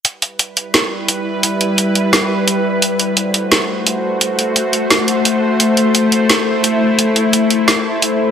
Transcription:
<<
  \new Staff \with { instrumentName = "Synth drone" } { \time 4/4 \key e \minor \tempo 4 = 173 << { <g b'>1~ | <g b'>1 | <a c''>1~ | <a c''>1~ |
<a c''>1~ | <a c''>1 | } \\ { e'1~ | e'1 | fis'1~ | fis'1 |
e'1~ | e'1 | } >> }
  \new DrumStaff \with { instrumentName = "Drums" } \drummode { \time 4/4 hh8 hh8 hh8 hh8 <hh sn>4 hh4 | hh8 hh8 hh8 hh8 <hh sn>4 hh4 | hh8 hh8 hh8 hh8 <hh sn>4 hh4 | hh8 hh8 hh8 hh8 <hh sn>8 hh8 hh4 |
hh8 hh8 hh8 hh8 <hh sn>4 hh4 | hh8 hh8 hh8 hh8 <hh sn>4 hh4 | }
>>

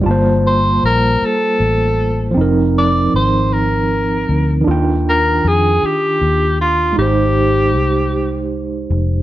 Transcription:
<<
  \new Staff \with { instrumentName = "Tenor saxophone" } { \time 6/8 \key g \phrygian \tempo 4. = 52 r8 c''8 bes'8 a'4. | r8 d''8 c''8 bes'4. | r8 bes'8 aes'8 g'4 f'8 | g'2 r4 | }
  \new Staff \with { instrumentName = "Tine electric piano" } { \time 6/8 \key g \phrygian <g bes f' c'' a''>2. | <f c' ees' bes'>2. | <ees d' f' g''>2. | <aes ees' g' c''>2. | }
  \new Staff \with { instrumentName = "Fingered electric bass" } { \clef bass \time 6/8 \key g \phrygian g,,4 bes,,8 r8 a,,4 | f,,4 aes,,4. d,8 | ees,4 f,8 r8 ees,4 | aes,,4 c,4. f,,8 | }
>>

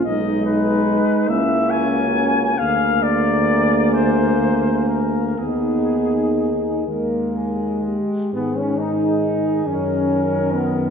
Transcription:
<<
  \new Staff \with { instrumentName = "Flugelhorn" } { \time 6/8 \key gis \minor \tempo 4. = 45 dis''8 b'4 e''8 gis''4 | eis''8 d''4 bis'4 ais'8 | gis'4. r4. | r4. ais'4. | }
  \new Staff \with { instrumentName = "French horn section" } { \time 6/8 \key gis \minor dis'4. e'8. fis'8. | gis'2. | gis'4. ais'8 gis'8 g'8 | gis'2. | }
  \new Staff \with { instrumentName = "Trombone section" } { \time 6/8 \key gis \minor dis'4. cis'4. | ais2. | dis'4. gis4. | b16 cis'16 dis'4 cis'4 b8 | }
  \new Staff \with { instrumentName = "Trombone" } { \time 6/8 \key gis \minor gis4. ais4. | ais2. | b4 r8 ais4 r8 | dis2. | }
  \new Staff \with { instrumentName = "Tuba" } { \clef bass \time 6/8 \key gis \minor b,,4 r8 cis,4. | d,2. | dis,4. dis,4 r8 | gis,4. fis,4. | }
>>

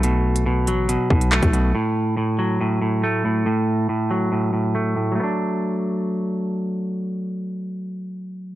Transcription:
<<
  \new Staff \with { instrumentName = "Clean electric guitar" } { \clef bass \time 4/4 \key b \minor \tempo 4 = 140 <b, a>4 b,8 fis8 b,8 b,8 a8 b,8 | a,4 a,8 fis8 a,8 a,8 a8 a,8 | a,4 a,8 fis8 a,8 a,8 a8 a,8 | <fis a b d'>1~ |
<fis a b d'>1 | }
  \new Staff \with { instrumentName = "808-style bass" } { \clef bass \time 4/4 \key b \minor b,,4. a,,8. r16 b,,8. b,,8. | r1 | r1 | r1 |
r1 | }
  \new DrumStaff \with { instrumentName = "Drums" } \drummode { \time 4/4 hh8. hh16 r8 hh8 hh8 bd16 hh16 <hc hh>16 <hh bd>16 hh8 | r4 r4 r4 r4 | r4 r4 r4 r4 | r4 r4 r4 r4 |
r4 r4 r4 r4 | }
>>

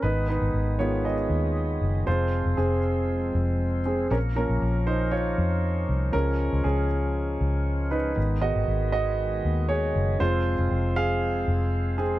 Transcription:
<<
  \new Staff \with { instrumentName = "Grand piano" } { \time 4/4 \key aes \mixolydian \tempo 4 = 118 <ees' ces''>8 <ees' ces''>4 <f' des''>8 <aes' ees''>2 | <f' c''>4 <c' aes'>2~ <c' aes'>8 <c' aes'>8 | <des' bes'>8 bes'4 <ees' c''>8 <f' des''>2 | bes'4 <des' aes'>2~ <des' aes'>8 <ees' ces''>8~ |
<ees' ces''>8 <ges' ees''>4 <ges' ees''>4. <aes' des''>4 | <f' c''>4. <aes' f''>2 <c' aes'>8 | }
  \new Staff \with { instrumentName = "Grand piano" } { \clef bass \time 4/4 \key aes \mixolydian r4. <ees aes ces'>8 r2 | <f aes c'>4. r2 r8 | r8 <f bes des'>2.~ <f bes des'>8 | <f aes des'>4. r2 r8 |
r8 <ees aes ces'>2.~ <ees aes ces'>8 | <f aes c'>8 r2. r8 | }
  \new Staff \with { instrumentName = "Tonewheel organ" } { \time 4/4 \key aes \mixolydian ces'1 | c'1 | des'1~ | des'1 |
ces'1 | c'1 | }
  \new Staff \with { instrumentName = "Tonewheel organ" } { \clef bass \time 4/4 \key aes \mixolydian << { aes1~ | aes1 | bes1 | aes1~ |
aes1~ | aes1 | } \\ { ees1 | f1~ | f1~ | f1 |
ees1 | f1 | } >> }
  \new Staff \with { instrumentName = "Fingered electric bass" } { \clef bass \time 4/4 \key aes \mixolydian aes,,8. aes,,16 aes,,4. ees,4 ges,,8 | f,,8. f,,16 f,,4. f,,4. | bes,,8. bes,,16 bes,,4. f,4 c,8 | des,8. des,16 des,4. des,4. |
aes,,8. aes,,16 aes,,4. ees,4 ges,,8 | f,,8. f,,16 f,,4. f,,4. | }
>>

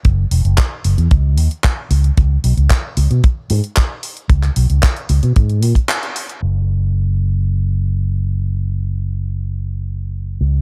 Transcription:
<<
  \new Staff \with { instrumentName = "Fingered electric bass" } { \clef bass \time 4/4 \key cis \minor \tempo 4 = 113 fis,,16 r16 e,,16 fis,,16 r8 fis,,16 e,16 cis,8 dis,16 r8. cis,16 r16 | cis,16 r16 b,,16 cis,16 r8 cis,16 b,16 r8 gis,16 r4 r16 | cis,16 r16 b,,16 cis,16 r8 cis,16 b,16 gis,8 ais,16 r4 r16 | fis,,1~ |
fis,,2.~ fis,,8 cis,8 | }
  \new DrumStaff \with { instrumentName = "Drums" } \drummode { \time 4/4 <hh bd>8 hho16 hh16 <hc hh bd>8 hho16 hh16 <hh bd>8 hho16 hh16 <hc hh bd>8 hho16 hh16 | <hh bd>8 hho16 hh16 <hc hh bd>8 hho16 hh16 <hh bd>8 hho16 hh16 <hc hh bd>8 hho16 hh16 | <hh bd>16 <hc hh>16 hho16 hh16 <hc hh bd>16 hh16 hho16 hh16 <hh bd>16 hh16 hho16 <hh bd>16 <hc hh>16 hh16 hho16 hh16 | r4 r4 r4 r4 |
r4 r4 r4 r4 | }
>>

